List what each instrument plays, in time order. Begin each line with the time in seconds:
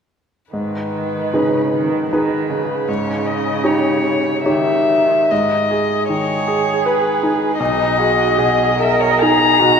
0.52 grand piano G#2, cello D#3, violin B4
1.34 cello C#3, grand piano D#4 G#4 B4
1.74 cello D#3
2.11 cello D#3, grand piano D#4 G#4 B4, violin B4
2.50 cello C#3
2.88 grand piano G#2, violin C#5
3.27 violin D#5
3.64 grand piano D#4 G4 C#5, violin C#5
4.44 cello D#3, grand piano D#4 G4 C#5, violin E5
5.30 grand piano G#2, violin D#5
5.71 grand piano G#4
6.08 grand piano D#3, cello G#4, violin C#5
6.48 grand piano G#4
6.85 grand piano B4, violin B4
7.23 grand piano D#4
7.58 grand piano B1, cello D#4, violin D#5
7.98 cello F#4, grand piano G#4
8.38 grand piano B2, cello G#4
8.79 grand piano G#4, cello A#4, violin E5
8.92 violin D#5
9.01 violin C#5
9.11 violin D#5
9.20 grand piano D#4, cello G#4, violin A#5
9.60 grand piano B2, cello F#4